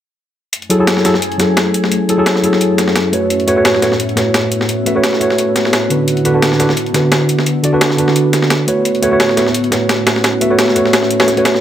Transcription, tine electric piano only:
0.70 0.77 F#3 medium
0.70 0.77 E4 medium
0.70 0.78 G#4 medium
0.70 0.78 A4 medium
0.79 1.03 F#3 medium
0.79 1.03 E4 medium
0.79 1.03 G#4 medium
0.79 1.03 A4 medium
1.04 1.15 F#3 medium
1.04 1.15 E4 medium
1.04 1.15 G#4 medium
1.04 1.15 A4 medium
1.38 2.06 F#3 medium
1.38 2.07 E4 medium
1.38 2.07 G#4 medium
1.38 2.08 A4 medium
2.08 2.16 F#3 medium
2.08 2.16 E4 medium
2.08 2.16 G#4 medium
2.08 2.17 A4 medium
2.18 2.41 F#3 medium
2.18 2.42 E4 medium
2.18 2.42 G#4 medium
2.18 2.42 A4 medium
2.42 3.10 F#3 medium
2.42 3.11 E4 medium
2.42 3.11 G#4 medium
2.42 3.12 A4 medium
3.12 3.46 A3 medium
3.12 3.46 F#4 medium
3.12 3.46 B4 medium
3.12 3.46 C#5 medium
3.47 3.55 A3 medium
3.47 3.55 F#4 medium
3.47 3.55 B4 medium
3.47 3.55 C#5 medium
3.56 3.80 A3 medium
3.56 3.80 F#4 medium
3.56 3.81 B4 medium
3.56 3.81 C#5 medium
3.82 3.92 A3 medium
3.82 3.92 F#4 medium
3.82 3.93 B4 medium
3.82 3.93 C#5 medium
4.16 4.84 A3 medium
4.16 4.84 F#4 medium
4.16 4.85 B4 medium
4.16 4.85 C#5 medium
4.86 4.93 A3 medium
4.86 4.93 F#4 medium
4.86 4.94 B4 medium
4.86 4.94 E5 medium
4.95 5.19 A3 medium
4.95 5.19 F#4 medium
4.95 5.19 B4 medium
4.95 5.20 C#5 medium
5.20 5.88 A3 medium
5.20 5.88 F#4 medium
5.20 5.89 B4 medium
5.20 5.89 C#5 medium
5.90 6.23 D3 medium
5.90 6.23 D4 medium
5.90 6.24 F#4 medium
5.90 6.24 B4 medium
6.24 6.32 D3 medium
6.24 6.32 D4 medium
6.24 6.32 F#4 medium
6.24 6.33 B4 medium
6.34 6.58 D3 medium
6.34 6.58 D4 medium
6.34 6.58 F#4 medium
6.34 6.58 B4 medium
6.59 6.70 D3 medium
6.59 6.70 D4 medium
6.59 6.70 F#4 medium
6.59 6.70 B4 medium
6.93 7.61 D3 medium
6.93 7.62 D4 medium
6.93 7.62 F#4 medium
6.93 7.63 B4 medium
7.63 7.71 D3 medium
7.63 7.71 D4 medium
7.63 7.71 F#4 medium
7.63 7.72 D5 medium
7.73 7.96 D3 medium
7.73 7.97 D4 medium
7.73 7.97 F#4 medium
7.73 7.97 B4 medium
7.97 8.65 D3 medium
7.97 8.66 D4 medium
7.97 8.66 F#4 medium
7.97 8.67 B4 medium
8.67 9.00 A3 medium
8.67 9.01 F#4 medium
8.67 9.01 B4 medium
8.67 9.01 C#5 medium
9.02 9.09 A3 medium
9.02 9.10 F#4 medium
9.02 9.10 B4 medium
9.02 9.10 C#5 loud
9.11 9.35 A3 medium
9.11 9.35 F#4 medium
9.11 9.36 B4 medium
9.11 9.36 C#5 medium
9.37 9.47 A3 medium
9.37 9.47 F#4 medium
9.37 9.48 B4 medium
9.37 9.48 C#5 medium
9.71 10.39 A3 medium
9.71 10.39 F#4 medium
9.71 10.40 B4 medium
9.71 10.40 C#5 medium
10.41 10.48 A3 medium
10.41 10.48 F#4 medium
10.41 10.49 B4 medium
10.41 10.49 E5 medium
10.50 10.74 A3 medium
10.50 10.74 F#4 medium
10.50 10.74 B4 medium
10.50 10.75 C#5 medium
10.75 11.18 A3 medium
10.75 11.18 F#4 medium
10.75 11.19 B4 medium
10.75 11.19 C#5 medium
11.19 11.29 A3 medium
11.19 11.29 F#4 medium
11.19 11.29 B4 medium
11.19 11.29 C#5 medium
11.37 11.61 A3 medium
11.37 11.61 F#4 medium
11.37 11.61 B4 medium
11.37 11.61 C#5 loud

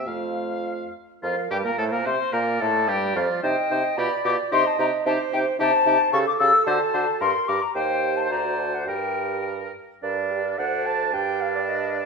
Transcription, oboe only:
0.07 0.94 F5 medium
1.23 1.35 F4 medium
1.51 1.57 G4 medium
1.65 1.77 A#4 medium
1.78 1.84 A4 medium
1.92 2.07 A#4 medium
2.06 2.34 C5 medium
2.33 2.63 A#4 medium
2.61 2.90 A4 medium
2.88 3.18 G4 medium
3.17 3.43 F4 medium
3.43 3.56 C5 medium
3.71 3.83 C5 medium
3.98 4.10 G4 medium
4.25 4.37 G4 medium
4.52 4.64 G4 medium
4.79 4.91 G4 medium
5.06 5.18 G4 medium
5.33 5.45 G4 medium
5.60 5.72 G4 medium
5.87 5.99 G4 medium
6.13 6.25 A4 medium
6.40 6.52 A4 medium
6.67 6.79 C5 medium
6.94 7.06 C5 medium
7.21 7.33 A#4 medium
7.48 7.60 A#4 medium
7.76 8.27 C5 medium
8.32 8.87 C5 medium
8.88 9.73 A#4 medium
10.03 10.55 D4 medium
10.58 11.13 D4 medium
11.14 12.05 D4 medium

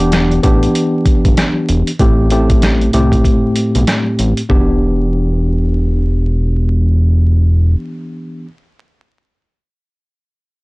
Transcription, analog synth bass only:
0.00 0.39 E1 loud
0.44 0.68 A1 medium
1.25 1.35 G1 medium
1.69 1.83 E1 medium
2.00 2.89 A1 loud
2.94 3.18 C2 medium
3.75 3.85 B1 loud
4.19 4.34 A1 medium
4.50 7.76 E1 loud

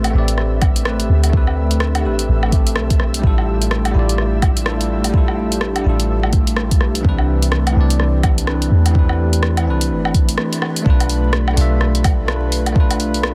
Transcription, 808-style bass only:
0.00 0.13 A1 medium
0.14 1.08 A1 medium
1.09 2.06 D2 medium
2.05 2.27 A1 medium
2.29 2.78 A1 medium
2.76 3.23 B1 medium
3.24 3.94 A1 loud
3.95 5.84 A1 medium
5.86 6.73 A1 medium
6.72 7.03 B1 medium
7.05 7.75 C2 loud
7.76 8.70 C2 medium
8.71 9.68 E2 medium
9.66 9.92 C2 loud
9.90 10.37 G1 medium
10.86 11.56 B1 loud
11.57 13.34 B1 medium

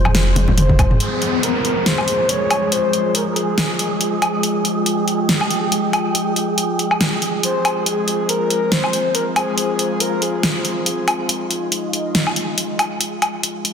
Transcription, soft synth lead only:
0.58 0.98 C5 loud
1.01 1.45 G#4 medium
1.43 1.88 A#4 medium
1.86 2.31 C5 loud
2.29 2.72 C#5 loud
2.72 3.12 C5 loud
3.15 3.22 A#4 medium
3.30 3.38 A#4 medium
3.36 4.22 G#4 medium
7.44 7.83 C5 loud
7.87 8.31 G#4 medium
8.29 8.74 A#4 medium
8.72 9.14 C5 loud
9.15 9.24 A#4 loud
9.36 10.02 G#4 medium
10.00 10.23 A#4 medium
10.21 11.07 G#4 medium

